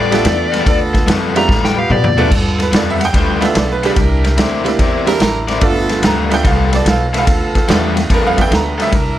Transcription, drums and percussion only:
0.12 snare, ride
0.25 snare, ride
0.54 snare, ride
0.66 kick, snare, ride
0.94 kick, snare, ride
1.08 snare, ride
1.36 snare, ride
1.49 kick, snare
1.65 snare
1.90 mid tom
2.04 mid tom
2.18 floor tom
2.31 kick, snare, crash
2.60 snare, ride
2.73 snare, ride
3.01 snare, ride
3.14 kick, snare, ride
3.42 snare, ride
3.55 snare, ride
3.83 snare, ride
3.96 kick, snare, ride
4.24 snare, ride
4.38 snare, ride
4.66 snare, ride
4.79 kick, snare, ride
5.07 snare, ride
5.20 snare, ride
5.48 snare, ride
5.61 kick, snare, ride
5.89 snare, ride
6.03 snare, ride
6.31 snare, ride
6.45 kick, snare, ride
6.73 snare, ride
6.86 snare, ride
7.14 snare, ride
7.27 kick, snare, ride
7.55 kick, snare, ride
7.68 snare, ride
7.97 snare, ride
8.10 kick, snare, ride
8.38 kick, snare, ride
8.52 snare, ride
8.80 snare, ride
8.92 kick, snare, ride

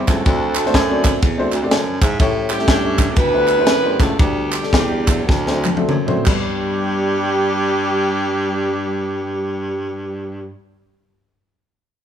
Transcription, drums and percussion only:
0.08 kick, snare, clap, ride
0.26 kick, ride
0.55 clap, ride
0.66 snare
0.74 kick, snare, ride
1.04 kick, clap, ride
1.22 kick, ride
1.52 clap, ride
1.71 snare, ride
2.02 kick, clap, ride
2.20 kick, ride
2.49 clap, ride
2.59 snare
2.68 kick, snare, ride
2.98 kick, clap, ride
3.16 kick, ride
3.48 clap, ride
3.67 snare, ride
3.99 kick, snare, clap, ride
4.19 kick, ride
4.52 clap, ride
4.63 snare
4.73 kick, snare, ride
5.07 kick, clap, ride
5.29 kick, snare
5.47 snare
5.64 clap, high tom
5.77 high tom
5.89 mid tom
6.08 mid tom
6.26 kick, clap, crash

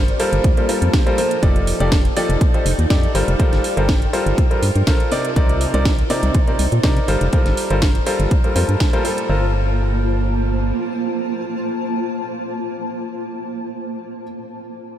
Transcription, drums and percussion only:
0.08 closed hi-hat
0.20 open hi-hat
0.33 closed hi-hat
0.44 kick, closed hi-hat
0.57 closed hi-hat
0.69 open hi-hat
0.82 closed hi-hat
0.93 kick, snare, closed hi-hat
1.07 closed hi-hat
1.18 open hi-hat
1.31 closed hi-hat
1.43 kick, closed hi-hat
1.56 closed hi-hat
1.67 open hi-hat
1.80 closed hi-hat
1.92 kick, snare, closed hi-hat
2.05 closed hi-hat
2.17 open hi-hat
2.30 closed hi-hat
2.41 kick, closed hi-hat
2.54 closed hi-hat
2.66 open hi-hat
2.79 closed hi-hat
2.90 kick, snare, closed hi-hat
3.03 closed hi-hat
3.15 open hi-hat
3.28 closed hi-hat
3.40 kick, closed hi-hat
3.53 snare, closed hi-hat
3.64 open hi-hat
3.77 closed hi-hat
3.89 kick, snare, closed hi-hat
4.02 closed hi-hat
4.13 open hi-hat
4.27 closed hi-hat
4.38 kick, closed hi-hat
4.51 closed hi-hat
4.63 open hi-hat
4.75 closed hi-hat
4.87 kick, snare, closed hi-hat
5.00 closed hi-hat
5.12 open hi-hat
5.25 closed hi-hat
5.36 kick, closed hi-hat
5.49 closed hi-hat
5.61 open hi-hat
5.74 closed hi-hat
5.85 kick, snare, closed hi-hat
5.98 closed hi-hat
6.10 open hi-hat
6.23 closed hi-hat
6.34 kick, closed hi-hat
6.48 closed hi-hat
6.59 open hi-hat
6.72 closed hi-hat
6.83 kick, snare, closed hi-hat
6.97 closed hi-hat
7.08 open hi-hat
7.21 closed hi-hat
7.33 kick, closed hi-hat
7.46 snare, closed hi-hat
7.57 open hi-hat
7.70 closed hi-hat
7.82 kick, snare, closed hi-hat
7.95 closed hi-hat
8.07 open hi-hat
8.20 closed hi-hat
8.31 kick, closed hi-hat
8.44 closed hi-hat
8.56 open hi-hat
8.69 closed hi-hat
8.80 kick, snare, closed hi-hat
8.93 closed hi-hat
9.05 open hi-hat
9.18 closed hi-hat

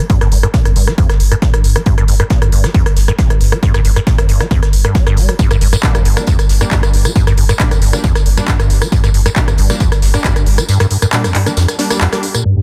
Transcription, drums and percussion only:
0.10 kick, closed hi-hat
0.21 cross-stick, closed hi-hat
0.32 closed hi-hat, open hi-hat
0.43 cross-stick, closed hi-hat
0.54 kick, snare, closed hi-hat
0.65 cross-stick, closed hi-hat
0.76 closed hi-hat, open hi-hat
0.87 cross-stick, snare, closed hi-hat
0.98 kick, closed hi-hat
1.09 cross-stick, snare, closed hi-hat
1.20 closed hi-hat, open hi-hat
1.32 cross-stick, closed hi-hat
1.42 kick, snare, closed hi-hat
1.54 cross-stick, closed hi-hat
1.64 closed hi-hat, open hi-hat
1.76 cross-stick, closed hi-hat
1.86 kick, closed hi-hat
1.98 cross-stick, closed hi-hat
2.08 closed hi-hat, open hi-hat
2.20 cross-stick, closed hi-hat
2.30 kick, snare, closed hi-hat
2.42 cross-stick, closed hi-hat
2.52 closed hi-hat, open hi-hat
2.64 cross-stick, snare, closed hi-hat
2.74 kick, closed hi-hat
2.86 cross-stick, closed hi-hat
2.96 snare, closed hi-hat, open hi-hat
3.08 cross-stick, closed hi-hat
3.18 kick, snare, closed hi-hat
3.30 cross-stick, closed hi-hat
3.40 open hi-hat
3.52 cross-stick, closed hi-hat
3.63 kick, closed hi-hat
3.74 cross-stick, closed hi-hat
3.85 closed hi-hat, open hi-hat
3.96 cross-stick, closed hi-hat
4.07 kick, snare, closed hi-hat
4.18 cross-stick, closed hi-hat
4.29 closed hi-hat, open hi-hat
4.40 cross-stick, snare, closed hi-hat
4.51 kick, closed hi-hat
4.62 cross-stick, snare, closed hi-hat
4.73 closed hi-hat, open hi-hat
4.85 cross-stick, closed hi-hat
4.95 kick, snare, closed hi-hat
5.07 cross-stick, closed hi-hat
5.17 closed hi-hat, open hi-hat
5.29 cross-stick, closed hi-hat
5.39 kick, closed hi-hat, tambourine
5.51 cross-stick, closed hi-hat, tambourine
5.61 closed hi-hat, open hi-hat
5.73 cross-stick, closed hi-hat, tambourine
5.83 kick, snare, clap, closed hi-hat, tambourine
5.95 cross-stick, closed hi-hat, tambourine
6.05 closed hi-hat, open hi-hat
6.17 cross-stick, snare, closed hi-hat, tambourine
6.27 kick, closed hi-hat, tambourine
6.39 cross-stick, closed hi-hat, tambourine
6.49 snare, closed hi-hat, open hi-hat
6.61 cross-stick, closed hi-hat, tambourine
6.71 kick, snare, clap, closed hi-hat, tambourine
6.83 cross-stick, closed hi-hat, tambourine
6.94 open hi-hat
7.05 cross-stick, closed hi-hat, tambourine
7.15 kick, closed hi-hat, tambourine
7.27 cross-stick, closed hi-hat, tambourine
7.37 closed hi-hat, open hi-hat
7.49 cross-stick, closed hi-hat, tambourine
7.60 kick, snare, clap, closed hi-hat, tambourine
7.71 cross-stick, closed hi-hat, tambourine
7.82 closed hi-hat, open hi-hat
7.93 cross-stick, snare, closed hi-hat, tambourine
8.04 kick, closed hi-hat, tambourine
8.15 cross-stick, snare, closed hi-hat, tambourine
8.26 closed hi-hat, open hi-hat
8.37 cross-stick, closed hi-hat, tambourine
8.48 kick, snare, clap, closed hi-hat, tambourine
8.60 cross-stick, closed hi-hat, tambourine
8.70 closed hi-hat, open hi-hat
8.82 cross-stick, closed hi-hat, tambourine
8.92 kick, closed hi-hat, tambourine
9.04 cross-stick, closed hi-hat, tambourine
9.14 closed hi-hat, open hi-hat
9.26 cross-stick, closed hi-hat, tambourine
9.36 kick, snare, clap, closed hi-hat, tambourine
9.48 cross-stick, closed hi-hat, tambourine
9.58 closed hi-hat, open hi-hat
9.70 cross-stick, snare, closed hi-hat, tambourine
9.80 kick, closed hi-hat, tambourine
9.92 cross-stick, closed hi-hat, tambourine
10.02 snare, closed hi-hat, open hi-hat
10.14 cross-stick, closed hi-hat, tambourine
10.24 kick, snare, clap, closed hi-hat, tambourine
10.36 cross-stick, closed hi-hat, tambourine
10.46 open hi-hat
10.58 cross-stick, closed hi-hat, tambourine
10.69 closed hi-hat, tambourine
10.80 cross-stick, closed hi-hat, tambourine
10.90 closed hi-hat, open hi-hat
11.02 cross-stick, closed hi-hat, tambourine
11.12 snare, clap, closed hi-hat, tambourine
11.24 cross-stick, closed hi-hat, tambourine
11.35 clap, closed hi-hat, open hi-hat
11.46 cross-stick, snare, closed hi-hat, tambourine
11.57 snare, closed hi-hat, tambourine
11.68 cross-stick, snare, closed hi-hat, tambourine
11.79 snare, closed hi-hat, open hi-hat
11.90 cross-stick, snare, closed hi-hat, tambourine
12.01 snare, clap, closed hi-hat, tambourine
12.12 cross-stick, snare, closed hi-hat, tambourine
12.23 closed hi-hat, open hi-hat
12.35 cross-stick, closed hi-hat, tambourine

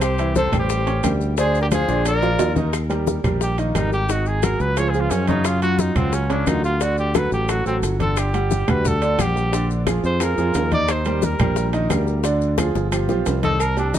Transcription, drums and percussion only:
0.01 high bongo, high conga, high timbale, claves, maracas
0.18 high conga, high timbale, maracas
0.35 high bongo, high conga, maracas
0.53 high bongo, high conga, low conga, high timbale, claves, maracas
0.70 high bongo, high conga, maracas
0.87 high bongo, high conga, high timbale, maracas
1.04 high bongo, low bongo, high conga, high timbale, low timbale, claves, maracas
1.21 high bongo, high conga, maracas
1.37 high bongo, high conga, high timbale, maracas
1.55 high conga, maracas
1.72 high bongo, high conga, high timbale, claves, maracas
1.89 high bongo, high conga, maracas
2.06 high bongo, high conga, high timbale, claves, maracas
2.22 low bongo, high conga, high timbale, maracas
2.39 low bongo, high conga, high timbale, maracas
2.56 low bongo, high conga, low timbale, maracas
2.73 high bongo, high conga, high timbale, claves, maracas
2.90 high conga, high timbale, maracas
3.07 high bongo, high conga, maracas
3.24 high bongo, high conga, low conga, high timbale, claves, maracas
3.41 high bongo, high conga, maracas
3.58 high bongo, high conga, high timbale, maracas
3.75 high bongo, low bongo, high conga, high timbale, claves, maracas
3.92 high bongo, high conga, maracas
4.09 high bongo, high conga, high timbale, maracas
4.26 high conga, maracas
4.43 high bongo, high conga, high timbale, claves, maracas
4.60 high bongo, high conga, maracas
4.77 high bongo, high conga, high timbale, claves, maracas
4.94 high bongo, high conga, maracas
5.11 high bongo, low bongo, high timbale, low timbale, maracas
5.27 high bongo, high conga, high timbale, maracas
5.44 high bongo, high timbale, claves, maracas
5.62 high conga, high timbale, maracas
5.79 high bongo, high conga, maracas
5.96 high bongo, high conga, low conga, high timbale, claves, maracas
6.13 high bongo, high conga, maracas
6.30 high bongo, high conga, high timbale, maracas
6.47 high bongo, low bongo, high conga, high timbale, low timbale, claves, maracas
6.64 high bongo, high conga, maracas
6.81 high bongo, high conga, high timbale, maracas
6.98 high conga, maracas
7.15 high bongo, high conga, high timbale, claves, maracas
7.32 high bongo, high conga, maracas
7.49 high bongo, high conga, high timbale, claves, maracas
7.66 high bongo, high conga, maracas
7.83 high bongo, low bongo, high conga, high timbale, maracas
8.00 high bongo, high conga, high timbale, maracas
8.17 high bongo, high conga, high timbale, claves, maracas
8.34 high conga, high timbale, maracas
8.51 high bongo, high conga, maracas
8.68 high bongo, high conga, low conga, high timbale, claves, maracas
8.85 high bongo, high conga, low conga, maracas
9.02 high bongo, high conga, high timbale, maracas
9.19 high bongo, low bongo, high conga, high timbale, claves, maracas
9.36 high bongo, high conga, maracas
9.53 high bongo, high conga, high timbale, maracas
9.70 high conga, maracas
9.87 high bongo, high conga, high timbale, claves, maracas
10.04 high bongo, high conga, maracas
10.20 high bongo, high conga, high timbale, claves, maracas
10.38 high bongo, high conga, maracas
10.54 high bongo, low bongo, high conga, high timbale, low timbale, maracas
10.71 high bongo, high conga, high timbale, maracas
10.88 high bongo, high conga, high timbale, claves, maracas
11.05 high conga, high timbale, maracas
11.22 high bongo, high conga, maracas
11.39 high bongo, high conga, low conga, high timbale, claves, maracas
11.56 high bongo, high conga, maracas
11.73 high bongo, high conga, high timbale, maracas
11.90 high bongo, low bongo, high conga, high timbale, low timbale, claves, maracas
12.07 high bongo, maracas
12.24 high bongo, high conga, high timbale, maracas
12.41 high conga, maracas
12.58 high bongo, high conga, high timbale, claves, maracas
12.75 high bongo, high conga, maracas
12.92 high bongo, high conga, high timbale, claves, maracas
13.09 low bongo, high conga, maracas
13.26 low bongo, high conga, high timbale, low timbale, maracas
13.43 low bongo, high conga, high timbale, maracas
13.60 cowbell, high conga, low agogo, claves, maracas
13.77 high conga, low agogo, maracas
13.94 cowbell, high conga, maracas

